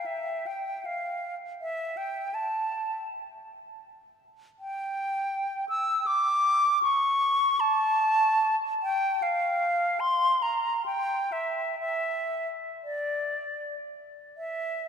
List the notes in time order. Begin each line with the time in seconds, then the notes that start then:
0.06 E5
0.47 G5
0.85 F5
1.62 E5
1.97 G5
2.34 A5
4.60 G5
5.69 E6
6.07 D6
6.83 C#6
7.60 A5
8.83 G5
9.22 F5
10.00 C6
10.42 A#5
10.86 G5
11.32 E5
11.80 E5
12.84 D5
14.37 E5